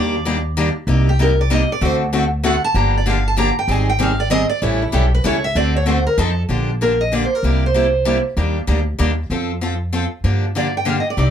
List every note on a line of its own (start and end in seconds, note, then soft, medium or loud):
0.00 0.68 D#2 medium
0.00 0.14 D#3 medium
0.00 0.15 G3 medium
0.00 0.15 A#3 medium
0.00 0.15 D4 medium
0.00 0.15 G4 medium
0.00 0.42 D5 medium
0.25 0.36 D#3 medium
0.25 0.37 G3 medium
0.25 0.37 A#3 medium
0.25 0.37 D4 medium
0.25 0.37 G4 medium
0.57 0.68 D#3 medium
0.57 0.68 G3 medium
0.57 0.68 A#3 loud
0.57 0.68 D4 medium
0.57 0.68 G4 loud
0.87 1.62 C2 medium
0.87 1.08 C3 medium
0.87 1.08 G3 medium
0.87 1.08 A#3 medium
0.87 1.08 D#4 medium
0.87 1.08 G4 medium
1.09 1.20 G4 medium
1.19 1.30 C3 medium
1.19 1.30 G3 medium
1.19 1.30 A#3 medium
1.19 1.31 D#4 medium
1.19 1.31 G4 medium
1.19 1.39 A#4 medium
1.41 1.51 D5 medium
1.50 1.61 C3 medium
1.50 1.61 G3 medium
1.50 1.62 A#3 medium
1.50 1.62 D#4 medium
1.50 1.62 G4 loud
1.50 1.70 D#5 medium
1.72 1.85 D5 medium
1.81 2.56 D2 medium
1.81 2.01 D3 medium
1.81 2.02 A3 medium
1.81 2.02 C4 medium
1.81 2.02 F#4 medium
1.81 2.02 A4 medium
1.81 1.95 C5 medium
2.13 2.24 D3 medium
2.13 2.24 A3 medium
2.13 2.24 C4 medium
2.13 2.24 F#4 loud
2.13 2.24 A4 medium
2.43 2.55 D3 medium
2.43 2.55 A3 loud
2.43 2.55 C4 medium
2.43 2.55 F#4 loud
2.43 2.55 A4 loud
2.43 2.63 F#5 medium
2.64 2.78 A5 loud
2.74 3.50 G1 medium
2.74 2.95 D3 medium
2.74 2.95 F3 medium
2.74 2.95 A#3 medium
2.74 2.96 D4 medium
2.74 2.95 G4 medium
2.74 2.95 A#5 loud
2.98 3.08 D5 medium
3.06 3.17 D3 medium
3.06 3.17 F3 medium
3.06 3.17 A#3 medium
3.06 3.18 D4 medium
3.06 3.18 G4 medium
3.06 3.26 F5 medium
3.28 3.38 A5 medium
3.37 3.48 D3 medium
3.37 3.48 F3 medium
3.37 3.48 A#3 medium
3.37 3.49 D4 loud
3.37 3.49 G4 loud
3.37 3.56 A#5 medium
3.59 3.71 G5 medium
3.68 4.43 G#1 medium
3.68 3.89 D#3 medium
3.68 3.89 G3 medium
3.68 3.89 C4 medium
3.68 3.89 D#4 medium
3.68 3.89 G#4 medium
3.68 3.88 G#5 loud
3.90 4.01 G5 medium
3.99 4.10 D#3 medium
3.99 4.11 G3 medium
3.99 4.11 C4 medium
3.99 4.11 D#4 medium
3.99 4.11 G#4 loud
3.99 4.20 F5 loud
4.20 4.30 D5 medium
4.30 4.42 D#3 medium
4.30 4.42 G3 medium
4.30 4.42 C4 loud
4.30 4.42 D#4 loud
4.30 4.42 G#4 loud
4.30 4.49 D#5 loud
4.49 4.62 D5 loud
4.62 4.87 A1 medium
4.62 4.82 E3 medium
4.62 4.82 G3 medium
4.62 4.82 C#4 medium
4.62 4.83 E4 medium
4.62 4.83 A4 medium
4.62 4.81 C#5 medium
4.82 4.94 E4 medium
4.92 5.20 B1 medium
4.92 5.04 E3 medium
4.92 5.04 G3 medium
4.92 5.04 C#4 medium
4.92 5.04 E4 medium
4.92 5.12 G4 medium
4.92 5.05 A4 medium
5.14 5.25 B4 medium
5.24 5.51 C#2 medium
5.24 5.35 E3 medium
5.24 5.35 G3 medium
5.24 5.36 C#4 loud
5.24 5.36 E4 loud
5.24 5.36 A4 loud
5.24 5.44 C#5 medium
5.44 5.56 E5 loud
5.55 6.05 D2 medium
5.55 5.76 D3 medium
5.55 5.76 A3 medium
5.55 5.76 C4 medium
5.55 5.76 F#4 medium
5.55 5.76 A4 medium
5.55 5.75 D5 medium
5.76 5.88 C#5 medium
5.86 5.97 D3 medium
5.86 5.97 A3 medium
5.86 5.98 C4 medium
5.86 5.98 F#4 medium
5.86 5.98 A4 medium
5.86 6.06 C5 medium
6.07 6.18 A#4 medium
6.18 6.43 F2 loud
6.18 6.29 F3 loud
6.18 6.29 C4 medium
6.18 6.29 D#4 loud
6.18 6.30 A4 loud
6.18 6.42 A4 medium
6.49 7.24 A#1 medium
6.49 6.69 D3 medium
6.49 6.69 F3 medium
6.49 6.70 A#3 medium
6.49 6.70 D4 medium
6.49 6.70 G4 medium
6.81 6.92 D3 medium
6.81 6.92 F3 medium
6.81 6.92 A#3 medium
6.81 6.92 D4 medium
6.81 6.93 G4 medium
6.81 7.01 A#4 medium
7.01 7.14 D#5 medium
7.12 7.23 D3 medium
7.12 7.23 F3 medium
7.12 7.23 A#3 medium
7.12 7.23 D4 medium
7.12 7.24 G4 medium
7.12 7.24 D5 medium
7.25 7.35 C5 medium
7.35 7.64 A#4 medium
7.43 8.18 C2 medium
7.43 7.64 C3 medium
7.43 7.64 G3 medium
7.43 7.64 A#3 medium
7.43 7.64 E4 medium
7.43 7.64 G4 medium
7.66 8.23 C5 medium
7.74 7.85 C3 medium
7.74 7.86 G3 medium
7.74 7.86 A#3 medium
7.74 7.86 E4 medium
7.74 7.86 G4 medium
8.05 8.16 C3 medium
8.05 8.16 G3 medium
8.05 8.17 A#3 medium
8.05 8.17 E4 medium
8.05 8.17 G4 medium
8.37 8.62 D#2 medium
8.37 8.57 D#3 medium
8.37 8.57 G3 medium
8.37 8.57 A#3 medium
8.37 8.57 D4 medium
8.37 8.57 G4 medium
8.67 8.94 D2 medium
8.67 8.79 D#3 medium
8.67 8.79 G3 medium
8.67 8.79 A#3 medium
8.67 8.79 D4 medium
8.67 8.79 G4 medium
8.99 9.26 D#2 medium
8.99 9.10 D#3 medium
8.99 9.10 G3 medium
8.99 9.10 A#3 medium
8.99 9.10 D4 medium
8.99 9.10 G4 medium
9.30 10.05 F2 medium
9.30 9.51 F3 medium
9.30 9.51 C4 medium
9.30 9.51 F4 medium
9.30 9.51 A4 medium
9.61 9.73 F3 medium
9.61 9.73 C4 medium
9.61 9.73 F4 medium
9.61 9.73 A4 medium
9.93 10.04 F3 medium
9.93 10.04 C4 medium
9.93 10.04 F4 medium
9.93 10.04 A4 medium
10.24 10.99 G2 medium
10.24 10.44 D3 medium
10.24 10.44 F3 medium
10.24 10.44 A#3 medium
10.24 10.45 D4 medium
10.24 10.44 G4 medium
10.55 10.66 D3 medium
10.55 10.67 F3 medium
10.55 10.67 A#3 medium
10.55 10.67 D4 medium
10.55 10.67 G4 medium
10.55 10.74 D5 medium
10.77 10.87 G5 medium
10.85 10.97 D3 medium
10.85 10.97 F3 medium
10.85 10.97 A#3 medium
10.85 10.98 D4 medium
10.85 10.98 G4 medium
10.85 10.93 F5 medium
11.00 11.09 D#5 medium
11.10 11.30 D5 medium
11.17 11.30 C2 medium
11.17 11.30 C3 medium
11.17 11.30 G3 medium
11.17 11.30 C4 medium
11.17 11.30 D#4 medium
11.17 11.30 G4 medium
11.17 11.30 D5 medium